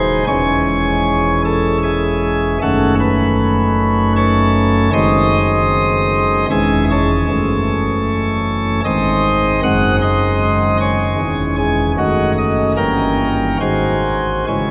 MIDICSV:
0, 0, Header, 1, 2, 480
1, 0, Start_track
1, 0, Key_signature, 4, "minor"
1, 0, Tempo, 777202
1, 162, Time_signature, 3, 2, 24, 8
1, 3521, Tempo, 784314
1, 7361, Tempo, 811908
1, 8321, Tempo, 873362
1, 8930, End_track
2, 0, Start_track
2, 0, Title_t, "Pipe organ"
2, 0, Program_c, 0, 19
2, 0, Note_on_c, 0, 27, 58
2, 0, Note_on_c, 0, 39, 63
2, 0, Note_on_c, 0, 54, 50
2, 0, Note_on_c, 0, 56, 46
2, 0, Note_on_c, 0, 63, 46
2, 0, Note_on_c, 0, 72, 77
2, 0, Note_on_c, 0, 80, 76
2, 0, Note_on_c, 0, 84, 100
2, 148, Note_off_c, 0, 27, 0
2, 148, Note_off_c, 0, 54, 0
2, 149, Note_off_c, 0, 39, 0
2, 149, Note_off_c, 0, 56, 0
2, 149, Note_off_c, 0, 63, 0
2, 149, Note_off_c, 0, 72, 0
2, 149, Note_off_c, 0, 80, 0
2, 149, Note_off_c, 0, 84, 0
2, 168, Note_on_c, 0, 61, 40
2, 168, Note_on_c, 0, 85, 90
2, 169, Note_on_c, 0, 40, 49
2, 169, Note_on_c, 0, 52, 43
2, 169, Note_on_c, 0, 56, 42
2, 170, Note_on_c, 0, 28, 51
2, 170, Note_on_c, 0, 73, 68
2, 171, Note_on_c, 0, 80, 71
2, 873, Note_off_c, 0, 85, 0
2, 874, Note_off_c, 0, 73, 0
2, 875, Note_off_c, 0, 80, 0
2, 894, Note_on_c, 0, 69, 71
2, 894, Note_on_c, 0, 81, 95
2, 1098, Note_off_c, 0, 69, 0
2, 1098, Note_off_c, 0, 81, 0
2, 1129, Note_on_c, 0, 80, 83
2, 1133, Note_on_c, 0, 68, 60
2, 1133, Note_on_c, 0, 76, 60
2, 1592, Note_off_c, 0, 40, 0
2, 1592, Note_off_c, 0, 52, 0
2, 1592, Note_off_c, 0, 56, 0
2, 1592, Note_off_c, 0, 61, 0
2, 1593, Note_off_c, 0, 28, 0
2, 1597, Note_off_c, 0, 80, 0
2, 1599, Note_off_c, 0, 68, 0
2, 1599, Note_off_c, 0, 76, 0
2, 1614, Note_on_c, 0, 42, 60
2, 1614, Note_on_c, 0, 51, 45
2, 1614, Note_on_c, 0, 57, 45
2, 1614, Note_on_c, 0, 61, 45
2, 1615, Note_on_c, 0, 78, 64
2, 1615, Note_on_c, 0, 81, 94
2, 1616, Note_on_c, 0, 30, 57
2, 1616, Note_on_c, 0, 69, 70
2, 1819, Note_off_c, 0, 69, 0
2, 1819, Note_off_c, 0, 78, 0
2, 1819, Note_off_c, 0, 81, 0
2, 1851, Note_on_c, 0, 83, 93
2, 1852, Note_on_c, 0, 71, 76
2, 2546, Note_off_c, 0, 71, 0
2, 2546, Note_off_c, 0, 83, 0
2, 2570, Note_on_c, 0, 81, 79
2, 2570, Note_on_c, 0, 85, 109
2, 2572, Note_on_c, 0, 73, 75
2, 3018, Note_off_c, 0, 42, 0
2, 3018, Note_off_c, 0, 51, 0
2, 3018, Note_off_c, 0, 57, 0
2, 3018, Note_off_c, 0, 61, 0
2, 3019, Note_off_c, 0, 30, 0
2, 3029, Note_off_c, 0, 81, 0
2, 3029, Note_off_c, 0, 85, 0
2, 3030, Note_off_c, 0, 73, 0
2, 3043, Note_on_c, 0, 56, 52
2, 3044, Note_on_c, 0, 30, 55
2, 3044, Note_on_c, 0, 42, 62
2, 3044, Note_on_c, 0, 87, 109
2, 3045, Note_on_c, 0, 51, 51
2, 3045, Note_on_c, 0, 60, 49
2, 3046, Note_on_c, 0, 75, 87
2, 3046, Note_on_c, 0, 84, 74
2, 3982, Note_off_c, 0, 30, 0
2, 3982, Note_off_c, 0, 42, 0
2, 3982, Note_off_c, 0, 56, 0
2, 3982, Note_off_c, 0, 60, 0
2, 3982, Note_off_c, 0, 87, 0
2, 3983, Note_off_c, 0, 51, 0
2, 3983, Note_off_c, 0, 75, 0
2, 3983, Note_off_c, 0, 84, 0
2, 4010, Note_on_c, 0, 61, 53
2, 4010, Note_on_c, 0, 76, 76
2, 4011, Note_on_c, 0, 40, 68
2, 4011, Note_on_c, 0, 68, 82
2, 4012, Note_on_c, 0, 28, 71
2, 4012, Note_on_c, 0, 52, 53
2, 4012, Note_on_c, 0, 56, 53
2, 4012, Note_on_c, 0, 80, 97
2, 4218, Note_off_c, 0, 68, 0
2, 4218, Note_off_c, 0, 76, 0
2, 4219, Note_off_c, 0, 80, 0
2, 4256, Note_on_c, 0, 85, 121
2, 4259, Note_on_c, 0, 81, 84
2, 4260, Note_on_c, 0, 73, 82
2, 4478, Note_off_c, 0, 40, 0
2, 4478, Note_off_c, 0, 61, 0
2, 4479, Note_off_c, 0, 28, 0
2, 4479, Note_off_c, 0, 52, 0
2, 4479, Note_off_c, 0, 56, 0
2, 4492, Note_on_c, 0, 30, 59
2, 4493, Note_on_c, 0, 42, 63
2, 4493, Note_on_c, 0, 61, 51
2, 4494, Note_on_c, 0, 52, 54
2, 4494, Note_on_c, 0, 57, 50
2, 5419, Note_off_c, 0, 30, 0
2, 5419, Note_off_c, 0, 42, 0
2, 5419, Note_off_c, 0, 52, 0
2, 5419, Note_off_c, 0, 57, 0
2, 5419, Note_off_c, 0, 61, 0
2, 5420, Note_off_c, 0, 85, 0
2, 5421, Note_off_c, 0, 81, 0
2, 5422, Note_off_c, 0, 73, 0
2, 5444, Note_on_c, 0, 87, 118
2, 5445, Note_on_c, 0, 60, 57
2, 5446, Note_on_c, 0, 32, 61
2, 5446, Note_on_c, 0, 44, 66
2, 5447, Note_on_c, 0, 51, 54
2, 5447, Note_on_c, 0, 56, 52
2, 5447, Note_on_c, 0, 75, 86
2, 5448, Note_on_c, 0, 84, 90
2, 5908, Note_off_c, 0, 87, 0
2, 5909, Note_off_c, 0, 56, 0
2, 5909, Note_off_c, 0, 60, 0
2, 5910, Note_off_c, 0, 32, 0
2, 5910, Note_off_c, 0, 44, 0
2, 5910, Note_off_c, 0, 51, 0
2, 5910, Note_off_c, 0, 75, 0
2, 5911, Note_off_c, 0, 84, 0
2, 5921, Note_on_c, 0, 56, 51
2, 5922, Note_on_c, 0, 42, 54
2, 5922, Note_on_c, 0, 51, 51
2, 5922, Note_on_c, 0, 60, 51
2, 5922, Note_on_c, 0, 90, 116
2, 5924, Note_on_c, 0, 30, 62
2, 5924, Note_on_c, 0, 78, 80
2, 5924, Note_on_c, 0, 87, 88
2, 6126, Note_off_c, 0, 90, 0
2, 6127, Note_off_c, 0, 78, 0
2, 6127, Note_off_c, 0, 87, 0
2, 6158, Note_on_c, 0, 87, 109
2, 6160, Note_on_c, 0, 84, 87
2, 6161, Note_on_c, 0, 75, 78
2, 6624, Note_off_c, 0, 87, 0
2, 6625, Note_off_c, 0, 75, 0
2, 6625, Note_off_c, 0, 84, 0
2, 6642, Note_on_c, 0, 85, 94
2, 6644, Note_on_c, 0, 73, 86
2, 6644, Note_on_c, 0, 80, 76
2, 6854, Note_off_c, 0, 42, 0
2, 6854, Note_off_c, 0, 51, 0
2, 6854, Note_off_c, 0, 56, 0
2, 6854, Note_off_c, 0, 60, 0
2, 6855, Note_off_c, 0, 30, 0
2, 6881, Note_on_c, 0, 52, 54
2, 6881, Note_on_c, 0, 61, 52
2, 6882, Note_on_c, 0, 28, 61
2, 6883, Note_on_c, 0, 56, 54
2, 6884, Note_on_c, 0, 40, 59
2, 7105, Note_off_c, 0, 85, 0
2, 7106, Note_off_c, 0, 73, 0
2, 7106, Note_off_c, 0, 80, 0
2, 7119, Note_on_c, 0, 68, 76
2, 7119, Note_on_c, 0, 80, 103
2, 7323, Note_off_c, 0, 68, 0
2, 7323, Note_off_c, 0, 80, 0
2, 7346, Note_off_c, 0, 28, 0
2, 7346, Note_off_c, 0, 52, 0
2, 7346, Note_off_c, 0, 61, 0
2, 7347, Note_off_c, 0, 40, 0
2, 7347, Note_off_c, 0, 56, 0
2, 7358, Note_on_c, 0, 78, 86
2, 7360, Note_on_c, 0, 51, 46
2, 7361, Note_on_c, 0, 42, 58
2, 7361, Note_on_c, 0, 57, 45
2, 7361, Note_on_c, 0, 61, 49
2, 7361, Note_on_c, 0, 66, 67
2, 7362, Note_on_c, 0, 30, 58
2, 7363, Note_on_c, 0, 75, 65
2, 7558, Note_off_c, 0, 78, 0
2, 7559, Note_off_c, 0, 66, 0
2, 7560, Note_off_c, 0, 75, 0
2, 7599, Note_on_c, 0, 87, 95
2, 7600, Note_on_c, 0, 75, 72
2, 7798, Note_off_c, 0, 87, 0
2, 7799, Note_off_c, 0, 75, 0
2, 7815, Note_off_c, 0, 61, 0
2, 7817, Note_off_c, 0, 30, 0
2, 7817, Note_off_c, 0, 42, 0
2, 7817, Note_off_c, 0, 51, 0
2, 7817, Note_off_c, 0, 57, 0
2, 7827, Note_on_c, 0, 31, 58
2, 7827, Note_on_c, 0, 58, 47
2, 7827, Note_on_c, 0, 61, 49
2, 7827, Note_on_c, 0, 82, 97
2, 7828, Note_on_c, 0, 43, 61
2, 7828, Note_on_c, 0, 52, 49
2, 7830, Note_on_c, 0, 70, 74
2, 7830, Note_on_c, 0, 79, 75
2, 8303, Note_off_c, 0, 31, 0
2, 8303, Note_off_c, 0, 43, 0
2, 8303, Note_off_c, 0, 52, 0
2, 8303, Note_off_c, 0, 58, 0
2, 8303, Note_off_c, 0, 61, 0
2, 8303, Note_off_c, 0, 82, 0
2, 8304, Note_off_c, 0, 70, 0
2, 8304, Note_off_c, 0, 79, 0
2, 8321, Note_on_c, 0, 84, 87
2, 8322, Note_on_c, 0, 44, 55
2, 8322, Note_on_c, 0, 66, 44
2, 8323, Note_on_c, 0, 32, 52
2, 8323, Note_on_c, 0, 56, 42
2, 8323, Note_on_c, 0, 72, 72
2, 8324, Note_on_c, 0, 51, 44
2, 8324, Note_on_c, 0, 80, 71
2, 8785, Note_off_c, 0, 84, 0
2, 8786, Note_off_c, 0, 32, 0
2, 8786, Note_off_c, 0, 44, 0
2, 8786, Note_off_c, 0, 56, 0
2, 8786, Note_off_c, 0, 66, 0
2, 8786, Note_off_c, 0, 72, 0
2, 8787, Note_off_c, 0, 51, 0
2, 8787, Note_off_c, 0, 80, 0
2, 8799, Note_on_c, 0, 85, 75
2, 8800, Note_on_c, 0, 49, 46
2, 8800, Note_on_c, 0, 52, 35
2, 8800, Note_on_c, 0, 56, 34
2, 8800, Note_on_c, 0, 73, 55
2, 8801, Note_on_c, 0, 64, 39
2, 8802, Note_on_c, 0, 80, 53
2, 8930, Note_off_c, 0, 49, 0
2, 8930, Note_off_c, 0, 52, 0
2, 8930, Note_off_c, 0, 56, 0
2, 8930, Note_off_c, 0, 64, 0
2, 8930, Note_off_c, 0, 73, 0
2, 8930, Note_off_c, 0, 80, 0
2, 8930, Note_off_c, 0, 85, 0
2, 8930, End_track
0, 0, End_of_file